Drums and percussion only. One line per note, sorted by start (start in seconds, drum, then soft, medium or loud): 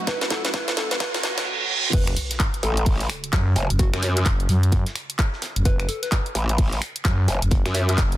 0.07 kick loud
0.07 snare medium
0.07 closed hi-hat medium
0.21 snare medium
0.21 closed hi-hat soft
0.30 kick medium
0.30 snare loud
0.30 open hi-hat loud
0.45 snare medium
0.45 closed hi-hat medium
0.54 kick loud
0.54 snare medium
0.54 closed hi-hat medium
0.68 snare medium
0.68 closed hi-hat soft
0.77 snare loud
0.77 open hi-hat loud
0.91 snare medium
0.91 closed hi-hat soft
1.00 kick loud
1.00 snare loud
1.00 closed hi-hat medium
1.14 snare medium
1.14 closed hi-hat soft
1.23 snare loud
1.23 open hi-hat loud
1.38 snare medium
1.38 closed hi-hat medium
1.93 kick loud
1.93 closed hi-hat medium
1.93 crash loud
2.07 finger snap medium
2.07 closed hi-hat soft
2.16 closed hi-hat medium
2.16 open hi-hat loud
2.31 snare soft
2.31 closed hi-hat medium
2.40 kick loud
2.40 snare loud
2.40 clap loud
2.40 closed hi-hat loud
2.40 closed hi-hat medium
2.54 closed hi-hat soft
2.63 closed hi-hat medium
2.63 open hi-hat medium
2.77 closed hi-hat medium
2.86 kick loud
2.86 closed hi-hat medium
2.86 open hi-hat medium
3.01 snare soft
3.01 closed hi-hat soft
3.10 finger snap medium
3.10 closed hi-hat medium
3.10 open hi-hat loud
3.24 closed hi-hat medium
3.33 kick loud
3.33 snare loud
3.33 clap loud
3.33 closed hi-hat medium
3.56 closed hi-hat medium
3.56 open hi-hat medium
3.70 closed hi-hat medium
3.79 kick loud
3.79 closed hi-hat medium
3.94 finger snap medium
3.94 snare soft
3.94 closed hi-hat soft
4.02 snare soft
4.02 closed hi-hat medium
4.02 open hi-hat loud
4.17 clap soft
4.17 closed hi-hat medium
4.25 kick loud
4.25 snare loud
4.25 clap loud
4.25 closed hi-hat medium
4.40 closed hi-hat soft
4.49 closed hi-hat medium
4.49 open hi-hat loud
4.63 closed hi-hat medium
4.72 kick loud
4.72 closed hi-hat medium
4.86 snare medium
4.86 closed hi-hat soft
4.96 finger snap medium
4.96 closed hi-hat medium
4.96 open hi-hat loud
5.10 closed hi-hat medium
5.19 kick loud
5.19 clap loud
5.19 closed hi-hat medium
5.33 snare soft
5.42 snare loud
5.42 closed hi-hat medium
5.42 open hi-hat loud
5.56 closed hi-hat medium
5.65 kick loud
5.65 closed hi-hat medium
5.80 finger snap medium
5.80 closed hi-hat soft
5.89 closed hi-hat medium
5.89 open hi-hat loud
6.03 snare soft
6.03 closed hi-hat medium
6.11 kick loud
6.11 snare loud
6.11 clap loud
6.11 closed hi-hat medium
6.26 closed hi-hat soft
6.35 closed hi-hat medium
6.35 open hi-hat loud
6.49 closed hi-hat medium
6.58 kick loud
6.58 closed hi-hat medium
6.58 open hi-hat medium
6.73 snare soft
6.73 closed hi-hat soft
6.82 finger snap medium
6.82 closed hi-hat medium
6.82 open hi-hat loud
6.96 closed hi-hat medium
7.05 kick loud
7.05 snare loud
7.05 clap loud
7.05 closed hi-hat medium
7.28 closed hi-hat medium
7.28 open hi-hat medium
7.42 closed hi-hat medium
7.51 kick loud
7.51 closed hi-hat medium
7.65 finger snap medium
7.65 snare medium
7.65 closed hi-hat soft
7.74 snare soft
7.74 closed hi-hat medium
7.74 open hi-hat loud
7.89 clap soft
7.89 closed hi-hat medium
7.98 kick loud
7.98 snare loud
7.98 clap loud
7.98 closed hi-hat medium
8.12 closed hi-hat soft